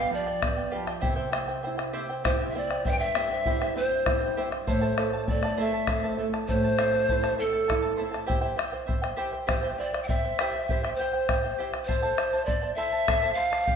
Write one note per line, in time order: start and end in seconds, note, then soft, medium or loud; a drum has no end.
0.00 0.99 G2 medium
0.00 0.11 G4 medium
0.00 0.13 B4 medium
0.00 0.12 D5 medium
0.00 0.10 F5 medium
0.00 0.11 F5 medium
0.00 0.12 G5 medium
0.11 0.40 F3 medium
0.11 0.27 G4 medium
0.11 0.26 D5 medium
0.11 0.77 D5 medium
0.11 0.26 F5 medium
0.11 0.25 G5 medium
0.27 0.41 G4 soft
0.27 0.41 D5 medium
0.27 0.41 G5 medium
0.27 bombo rim soft
0.42 0.72 B3 medium
0.42 0.57 G4 medium
0.42 0.57 D5 medium
0.42 0.57 F5 medium
0.42 0.56 G5 medium
0.42 bombo rim medium
0.42 bombo low medium
0.57 0.70 G4 soft
0.57 0.71 D5 soft
0.57 0.71 G5 soft
0.71 1.02 F3 medium
0.71 0.87 G4 medium
0.71 0.87 B4 medium
0.71 0.86 D5 medium
0.71 0.87 F5 medium
0.71 0.85 G5 medium
0.87 1.00 G4 medium
0.87 1.01 D5 medium
0.87 1.01 G5 medium
0.87 bombo rim medium
1.01 2.82 C3 medium
1.01 1.15 E4 medium
1.01 1.15 G4 medium
1.01 1.15 C5 medium
1.01 1.16 E5 medium
1.01 1.15 G5 medium
1.01 bombo low medium
1.16 1.31 E4 medium
1.16 1.32 G4 medium
1.16 1.30 C5 medium
1.16 1.30 E5 medium
1.16 1.31 G5 medium
1.31 1.64 C4 medium
1.31 1.48 E4 medium
1.31 1.47 C5 medium
1.31 1.47 E5 medium
1.31 1.46 G5 medium
1.31 bombo rim medium
1.48 1.62 E4 medium
1.48 1.63 C5 medium
1.48 1.63 G5 medium
1.63 1.78 E4 medium
1.63 1.95 E4 medium
1.63 1.77 C5 medium
1.63 1.78 E5 medium
1.63 1.76 G5 medium
1.78 1.92 E4 soft
1.78 1.92 C5 medium
1.78 1.93 G5 medium
1.78 bombo rim medium
1.93 2.24 C4 medium
1.93 2.09 E4 loud
1.93 2.09 G4 medium
1.93 2.09 C5 loud
1.93 2.09 E5 medium
1.93 2.08 G5 medium
2.09 2.23 E4 soft
2.09 2.23 C5 medium
2.09 2.24 G5 medium
2.24 2.38 E4 medium
2.24 2.54 E4 medium
2.24 2.38 G4 medium
2.24 2.38 C5 medium
2.24 2.47 C5 medium
2.24 2.38 E5 medium
2.24 2.38 G5 medium
2.24 bombo rim medium
2.24 bombo low medium
2.39 2.53 E4 medium
2.39 2.55 G4 medium
2.39 2.54 C5 medium
2.39 2.53 E5 medium
2.39 2.54 G5 medium
2.48 2.59 E5 medium
2.54 2.85 C4 medium
2.54 2.70 E4 medium
2.54 2.69 C5 medium
2.54 2.88 D5 medium
2.54 2.69 E5 medium
2.54 2.70 G5 medium
2.71 2.84 E4 soft
2.71 2.85 C5 medium
2.71 2.85 G5 medium
2.71 bombo rim medium
2.85 4.63 G2 medium
2.85 3.01 E4 medium
2.85 3.00 C5 medium
2.85 3.00 E5 medium
2.85 2.92 E5 loud
2.85 3.00 G5 medium
2.85 bombo low medium
2.91 3.00 G5 medium
2.99 3.14 E4 soft
2.99 3.14 C5 soft
2.99 3.76 E5 loud
2.99 3.15 G5 medium
3.15 3.45 C4 medium
3.15 3.31 E4 medium
3.15 3.30 G4 medium
3.15 3.31 C5 medium
3.15 3.31 E5 medium
3.15 3.30 G5 medium
3.15 bombo rim medium
3.32 3.46 E4 medium
3.32 3.46 C5 medium
3.32 3.46 G5 medium
3.46 3.75 E4 medium
3.46 3.60 E4 medium
3.46 3.61 G4 medium
3.46 3.61 C5 medium
3.46 3.60 E5 medium
3.46 3.60 G5 medium
3.46 bombo low medium
3.61 3.74 E4 medium
3.61 3.77 G4 medium
3.61 3.75 C5 medium
3.61 3.74 E5 medium
3.61 3.76 G5 medium
3.61 bombo rim medium
3.75 4.06 C4 medium
3.75 3.91 E4 medium
3.75 3.91 C5 medium
3.75 4.41 C5 loud
3.75 3.91 E5 medium
3.75 3.90 G5 medium
3.91 4.05 E4 soft
3.91 4.06 C5 medium
3.91 4.06 G5 medium
4.06 4.36 E4 medium
4.06 4.21 E4 medium
4.06 4.20 C5 medium
4.06 4.22 E5 medium
4.06 4.19 G5 medium
4.06 bombo rim medium
4.06 bombo low medium
4.20 4.36 E4 soft
4.20 4.37 C5 soft
4.20 4.36 G5 medium
4.37 4.67 C4 medium
4.37 4.50 E4 medium
4.37 4.52 G4 medium
4.37 4.50 C5 medium
4.37 4.52 E5 medium
4.37 4.49 G5 medium
4.50 4.67 E4 soft
4.50 4.66 C5 medium
4.50 4.67 G5 medium
4.50 bombo rim medium
4.67 6.45 A2 medium
4.67 4.81 E4 medium
4.67 4.81 A4 medium
4.67 4.82 C5 medium
4.67 5.24 C5 medium
4.67 4.82 E5 medium
4.67 4.80 A5 medium
4.67 bombo low medium
4.81 4.97 E4 medium
4.81 4.97 A4 medium
4.81 4.98 C5 medium
4.81 4.96 E5 medium
4.81 4.97 A5 medium
4.98 5.27 A3 medium
4.98 5.13 E4 medium
4.98 5.13 A4 medium
4.98 5.13 E5 medium
4.98 5.12 A5 medium
4.98 bombo rim medium
5.13 5.27 E4 soft
5.13 5.27 A4 medium
5.13 5.28 A5 medium
5.27 5.57 C4 medium
5.27 5.43 E4 medium
5.27 5.43 A4 medium
5.27 5.62 D5 medium
5.27 5.43 E5 medium
5.27 5.43 A5 medium
5.27 bombo low medium
5.43 5.57 E4 soft
5.43 5.57 A4 soft
5.43 5.57 A5 medium
5.43 bombo rim medium
5.57 5.87 A3 medium
5.57 5.73 E4 medium
5.57 5.73 A4 medium
5.57 5.73 C5 medium
5.57 5.73 E5 medium
5.57 6.20 E5 loud
5.57 5.72 A5 medium
5.73 5.87 E4 soft
5.73 5.88 A4 medium
5.73 5.87 A5 medium
5.87 6.18 C4 medium
5.87 6.02 E4 medium
5.87 6.02 A4 medium
5.87 6.03 C5 medium
5.87 6.03 E5 medium
5.87 6.02 A5 medium
5.87 bombo rim medium
5.87 bombo low medium
6.04 6.17 E4 medium
6.04 6.18 A4 medium
6.04 6.19 C5 medium
6.04 6.17 E5 medium
6.04 6.18 A5 medium
6.18 6.48 A3 medium
6.18 6.34 E4 medium
6.18 6.33 A4 medium
6.18 6.34 E5 medium
6.18 6.32 A5 medium
6.33 6.47 E4 soft
6.33 6.47 A4 soft
6.33 6.48 A5 medium
6.33 bombo rim medium
6.48 8.26 A2 medium
6.48 6.64 E4 medium
6.48 6.63 A4 medium
6.48 7.35 C5 loud
6.48 6.64 E5 medium
6.48 6.63 A5 medium
6.48 bombo rim soft
6.48 bombo low medium
6.64 6.77 E4 soft
6.64 6.78 A4 soft
6.64 6.78 A5 soft
6.78 7.09 C4 medium
6.78 6.93 E4 medium
6.78 6.92 A4 medium
6.78 6.94 C5 medium
6.78 6.94 E5 medium
6.78 6.91 A5 medium
6.78 bombo rim medium
6.92 7.08 E4 soft
6.92 7.08 A4 medium
6.92 7.08 A5 medium
7.09 7.22 E4 medium
7.09 7.40 E4 medium
7.09 7.22 A4 medium
7.09 7.23 C5 medium
7.09 7.23 E5 medium
7.09 7.22 A5 medium
7.09 bombo low medium
7.23 7.37 E4 medium
7.23 7.38 A4 medium
7.23 7.39 C5 medium
7.23 7.37 E5 medium
7.23 7.38 A5 medium
7.23 bombo rim medium
7.38 7.53 E4 medium
7.38 7.52 A4 medium
7.38 8.03 A4 medium
7.38 7.54 E5 medium
7.38 7.51 A5 medium
7.38 bombo rim soft
7.42 7.70 C4 medium
7.52 7.66 E4 soft
7.52 7.67 A4 medium
7.52 7.67 A5 medium
7.66 7.82 E4 medium
7.66 7.81 A4 medium
7.66 7.83 E5 medium
7.66 7.81 A5 medium
7.66 bombo rim medium
7.66 bombo low medium
7.71 8.00 E4 medium
7.82 7.97 E4 soft
7.82 7.97 A4 soft
7.82 7.97 A5 medium
7.82 bombo rim soft
7.97 8.11 E4 medium
7.97 8.11 A4 medium
7.97 8.13 C5 medium
7.97 8.14 E5 medium
7.97 8.10 A5 medium
7.97 bombo rim soft
8.01 8.30 C4 medium
8.11 8.26 E4 soft
8.11 8.27 A4 medium
8.11 8.27 A5 medium
8.11 bombo rim medium
8.26 8.40 E4 medium
8.26 8.41 G4 medium
8.26 8.40 C5 medium
8.26 8.40 E5 medium
8.26 8.40 G5 medium
8.26 bombo low medium
8.41 8.56 E4 medium
8.41 8.58 G4 medium
8.41 8.56 C5 medium
8.41 8.55 E5 medium
8.41 8.57 G5 medium
8.56 8.72 E4 medium
8.56 8.71 C5 medium
8.56 8.73 E5 medium
8.56 8.71 G5 medium
8.56 bombo rim medium
8.72 8.86 E4 medium
8.72 8.86 C5 medium
8.72 8.87 G5 medium
8.86 9.02 E4 medium
8.86 9.02 C5 medium
8.86 9.03 E5 medium
8.86 9.01 G5 medium
8.86 bombo low medium
9.02 9.16 E4 soft
9.02 9.16 C5 medium
9.02 9.17 G5 medium
9.02 bombo rim medium
9.16 9.33 E4 medium
9.16 9.33 G4 loud
9.16 9.32 C5 medium
9.16 9.33 E5 medium
9.16 9.31 G5 loud
9.33 9.46 E4 soft
9.33 9.46 C5 soft
9.33 9.47 G5 medium
9.47 9.62 E4 medium
9.47 9.62 G4 medium
9.47 9.61 C5 medium
9.47 9.77 C5 medium
9.47 9.62 E5 medium
9.47 9.61 G5 medium
9.47 bombo rim medium
9.47 bombo low medium
9.62 9.78 E4 medium
9.62 9.79 G4 medium
9.62 9.78 C5 medium
9.62 9.77 E5 medium
9.62 9.79 G5 medium
9.78 9.93 E4 medium
9.78 9.93 C5 medium
9.78 10.00 D5 medium
9.78 9.94 E5 medium
9.78 9.92 G5 medium
9.93 10.08 E4 soft
9.93 10.09 C5 medium
9.93 10.09 G5 medium
9.93 bombo rim medium
10.03 10.10 G5 medium
10.08 10.24 E4 medium
10.08 10.24 C5 medium
10.08 10.97 E5 loud
10.08 10.24 E5 medium
10.08 10.23 G5 medium
10.08 bombo low medium
10.24 10.39 E4 soft
10.24 10.40 C5 medium
10.24 10.40 G5 medium
10.39 10.55 E4 medium
10.39 10.55 G4 medium
10.39 10.55 C5 loud
10.39 10.55 E5 medium
10.39 10.54 G5 medium
10.39 bombo rim medium
10.55 10.69 E4 soft
10.55 10.69 C5 medium
10.55 10.69 G5 medium
10.69 10.83 E4 medium
10.69 10.84 G4 medium
10.69 10.83 C5 medium
10.69 10.83 E5 medium
10.69 10.82 G5 medium
10.69 bombo low medium
10.83 10.99 E4 medium
10.83 11.00 G4 medium
10.83 10.99 C5 medium
10.83 10.98 E5 medium
10.83 10.99 G5 medium
10.83 bombo rim medium
10.96 11.65 C5 medium
10.96 11.14 E5 medium
11.00 11.14 E4 medium
11.00 11.13 C5 medium
11.00 11.12 G5 medium
11.13 11.28 E4 soft
11.13 11.28 C5 medium
11.13 11.29 G5 medium
11.28 11.44 E4 medium
11.28 11.43 C5 medium
11.28 11.44 E5 medium
11.28 11.42 G5 medium
11.28 bombo rim medium
11.28 bombo low medium
11.44 11.58 E4 soft
11.44 11.59 C5 soft
11.44 11.59 G5 medium
11.58 11.74 E4 medium
11.58 11.74 G4 medium
11.58 11.73 C5 medium
11.58 11.74 E5 medium
11.58 11.72 G5 medium
11.73 11.87 E4 soft
11.73 11.87 C5 medium
11.73 11.89 G5 medium
11.73 bombo rim medium
11.85 12.02 E4 medium
11.85 12.03 A4 medium
11.85 12.47 C5 loud
11.85 12.02 C5 medium
11.85 12.02 E5 medium
11.89 12.01 A5 medium
11.89 bombo low medium
12.02 12.17 E4 medium
12.02 12.17 A4 medium
12.02 12.17 C5 medium
12.02 12.16 E5 medium
12.02 12.18 A5 medium
12.18 12.33 E4 medium
12.18 12.32 C5 medium
12.18 12.33 E5 medium
12.18 12.32 A5 medium
12.18 bombo rim medium
12.33 12.45 E4 soft
12.33 12.45 C5 medium
12.33 12.46 A5 medium
12.46 12.62 E4 medium
12.46 12.61 C5 medium
12.46 12.76 D5 medium
12.46 12.62 E5 medium
12.46 12.61 A5 medium
12.46 bombo low medium
12.62 12.76 E4 soft
12.62 12.77 C5 medium
12.62 12.77 A5 medium
12.75 12.93 E4 medium
12.75 12.92 A4 medium
12.75 12.92 C5 medium
12.75 13.33 E5 loud
12.75 12.93 E5 medium
12.75 12.91 A5 medium
12.92 13.07 E4 soft
12.92 13.07 C5 soft
12.92 13.07 A5 medium
13.07 13.22 E4 medium
13.07 13.22 A4 medium
13.07 13.21 C5 medium
13.07 13.22 E5 medium
13.07 13.21 A5 medium
13.07 bombo rim medium
13.07 bombo low medium
13.22 13.36 E4 medium
13.22 13.36 A4 medium
13.22 13.36 C5 medium
13.22 13.35 E5 medium
13.22 13.36 A5 medium
13.34 13.51 E4 medium
13.34 13.51 C5 medium
13.34 13.52 E5 medium
13.34 13.76 F5 loud
13.34 13.50 A5 medium
13.51 13.67 E4 soft
13.51 13.66 C5 medium
13.51 13.67 A5 medium
13.51 bombo rim medium
13.66 13.76 G4 medium
13.66 13.76 D5 medium
13.66 13.76 F5 medium
13.66 13.76 G5 medium
13.66 bombo low medium